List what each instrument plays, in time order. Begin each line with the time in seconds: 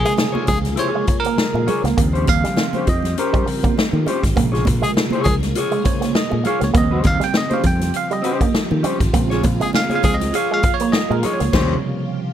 Already playing: tine electric piano C3 C#3 G#3, string machine F3 A#3 F4 G#4
0.00 tine electric piano G#4, muted clean electric guitar stroke
0.05 clean electric guitar G#3, tenor saxophone G#4, closed hi-hat
0.16 muted clean electric guitar stroke, snare, muted conga
0.32 clean electric guitar F4 G#4 C#5, high conga
0.47 fingered electric bass C#2, clean electric guitar F3, tenor saxophone G#4, muted clean electric guitar stroke, kick, snare, closed hi-hat, muted conga
0.63 muted clean electric guitar stroke, snare, closed hi-hat, low conga
0.76 clean electric guitar E4 G4 C5, tine electric piano C#5, closed hi-hat
0.80 muted conga
0.88 clean electric guitar F4 G#4 C#5
0.95 clean electric guitar G#3
1.07 muted clean electric guitar stroke, kick, closed hi-hat, muted conga
1.20 tine electric piano A#4, muted clean electric guitar stroke
1.24 clean electric guitar A#3, closed hi-hat
1.38 snare, muted conga
1.54 fingered electric bass A#2, clean electric guitar G#3, muted clean electric guitar stroke, high conga
1.66 clean electric guitar F4 G#4 C#5, muted clean electric guitar stroke, closed hi-hat, muted conga, low conga
1.84 fingered electric bass C#2, clean electric guitar A#3, muted clean electric guitar stroke, snare, closed hi-hat
1.96 fingered electric bass D#2, tine electric piano C#3 F3 G3 C4, string machine F3 C4 G4, clean electric guitar A#3, muted clean electric guitar stroke, kick, closed hi-hat
2.13 clean electric guitar C#4 G4 C5, closed hi-hat
2.27 fingered electric bass D#2, tine electric piano F5, muted clean electric guitar stroke, kick, closed hi-hat, high conga
2.44 clean electric guitar G3, muted clean electric guitar stroke, snare, closed hi-hat
2.57 muted clean electric guitar stroke, snare, muted conga
2.73 clean electric guitar C#4 G4 C5, closed hi-hat, high conga
2.87 fingered electric bass F2, clean electric guitar F3, tine electric piano D#5, muted clean electric guitar stroke, kick, closed hi-hat
3.02 muted clean electric guitar stroke, snare, closed hi-hat, low conga
3.18 clean electric guitar C#4 G4 C5, tine electric piano A#4, closed hi-hat, muted conga
3.33 clean electric guitar G3, kick, closed hi-hat
3.47 tine electric piano C#3 F3 G3 C4, muted clean electric guitar stroke, open hi-hat
3.63 clean electric guitar A#3, muted clean electric guitar stroke, kick, closed hi-hat
3.78 snare, muted conga
3.93 fingered electric bass D#3, muted clean electric guitar stroke, high conga
4.06 clean electric guitar G3 C#4 G4 C5, closed hi-hat, low conga
4.23 fingered electric bass G#1, muted clean electric guitar stroke, kick, snare, closed hi-hat
4.35 fingered electric bass A#1, tine electric piano C3 C#3 G#3, clean electric guitar A#3, string machine A#3 F4 G#4, muted clean electric guitar stroke, kick, closed hi-hat, muted conga
4.52 clean electric guitar F4 G#4 C#5, snare, closed hi-hat
4.65 fingered electric bass A#1, muted clean electric guitar stroke, kick, closed hi-hat, muted conga, high conga
4.82 clean electric guitar G#3, tenor saxophone G#4, muted clean electric guitar stroke, closed hi-hat
4.94 muted clean electric guitar stroke, snare, muted conga
5.10 clean electric guitar G#4 C#5, closed hi-hat, high conga
5.15 clean electric guitar F4
5.24 fingered electric bass C#2, clean electric guitar F3, tenor saxophone G#4, muted clean electric guitar stroke, kick, snare, closed hi-hat
5.40 muted clean electric guitar stroke, snare, closed hi-hat, low conga
5.55 clean electric guitar F4 G#4 C#5, closed hi-hat, muted conga
5.71 clean electric guitar G#3, closed hi-hat
5.84 tine electric piano C#3 G#3 C5 C#5, muted clean electric guitar stroke, kick, closed hi-hat, muted conga
6.01 clean electric guitar A#3, muted clean electric guitar stroke, snare, closed hi-hat
6.15 tine electric piano D#5, snare
6.30 fingered electric bass A#2, clean electric guitar G#3, muted clean electric guitar stroke, high conga
6.44 clean electric guitar F4 G#4 C#5, tine electric piano F5, muted clean electric guitar stroke, closed hi-hat, low conga
6.60 fingered electric bass C#2, clean electric guitar A#3, tine electric piano C#5, muted clean electric guitar stroke, snare, closed hi-hat
6.73 fingered electric bass D#2, tine electric piano C#3 F3 G3 C4, string machine F3 C4 G4, clean electric guitar A#3, muted clean electric guitar stroke, kick, closed hi-hat, muted conga
6.78 tine electric piano D#5
6.91 clean electric guitar C#4 G4 C5
7.04 fingered electric bass D#2, tine electric piano F5, muted clean electric guitar stroke, kick, closed hi-hat, muted conga, high conga
7.20 clean electric guitar G3, tine electric piano G5, muted clean electric guitar stroke, snare, closed hi-hat
7.34 tine electric piano D#5, muted clean electric guitar stroke, snare, muted conga
7.50 clean electric guitar C#4 G4 C5, tine electric piano F5, closed hi-hat, high conga
7.63 fingered electric bass F2, clean electric guitar F3, tine electric piano G5, muted clean electric guitar stroke, kick, closed hi-hat, muted conga
7.80 muted clean electric guitar stroke, snare, closed hi-hat, low conga
7.94 tine electric piano F5, muted clean electric guitar stroke, closed hi-hat
8.10 clean electric guitar G3, tine electric piano D#5, muted clean electric guitar stroke, closed hi-hat
8.22 clean electric guitar C#4 G4 C5, muted clean electric guitar stroke, closed hi-hat
8.40 clean electric guitar A#3, muted clean electric guitar stroke, kick, closed hi-hat
8.55 snare, muted conga
8.70 fingered electric bass D#3, muted clean electric guitar stroke, high conga
8.83 clean electric guitar G3 C#4 G4 C5, closed hi-hat, muted conga, low conga
9.00 fingered electric bass G#1, muted clean electric guitar stroke, kick, snare, closed hi-hat
9.13 fingered electric bass A#1, tine electric piano C#3 G#3 C4, clean electric guitar A#3, string machine A#3 G#4, muted clean electric guitar stroke, kick, closed hi-hat
9.30 clean electric guitar F4 G#4 C#5, snare, closed hi-hat
9.43 fingered electric bass A#1, muted clean electric guitar stroke, kick, closed hi-hat, muted conga, high conga
9.60 clean electric guitar G#3, tenor saxophone G#4, muted clean electric guitar stroke, closed hi-hat
9.73 tine electric piano F5, muted clean electric guitar stroke, snare, muted conga
9.89 clean electric guitar F4 G#4 C#5, closed hi-hat, high conga
9.95 tine electric piano F5
10.03 fingered electric bass C#2, tine electric piano C#3 G#3 C4, clean electric guitar F3, tenor saxophone G#4, muted clean electric guitar stroke, kick, snare, closed hi-hat, muted conga
10.14 tine electric piano D#5
10.20 muted clean electric guitar stroke, snare, closed hi-hat, low conga
10.33 clean electric guitar F4 G#4 C#5, tine electric piano F5, closed hi-hat
10.51 clean electric guitar G#3, tine electric piano F5
10.63 muted clean electric guitar stroke, kick, closed hi-hat, muted conga
10.74 tine electric piano C#5
10.80 clean electric guitar A#3, muted clean electric guitar stroke, closed hi-hat
10.92 tine electric piano D#5, muted clean electric guitar stroke, snare, muted conga
11.09 fingered electric bass A#2, clean electric guitar G#3, tine electric piano A#4, muted clean electric guitar stroke, high conga
11.23 clean electric guitar F4 G#4 C#5, tine electric piano D#5, muted clean electric guitar stroke, closed hi-hat, muted conga, low conga
11.34 tine electric piano C#5
11.39 fingered electric bass C#2, clean electric guitar A#3, muted clean electric guitar stroke, snare, closed hi-hat
11.52 fingered electric bass D#2, tine electric piano C3 C#3 F3 G3, string machine A#3 G4, clean electric guitar C#4 G4 C5, kick, snare, crash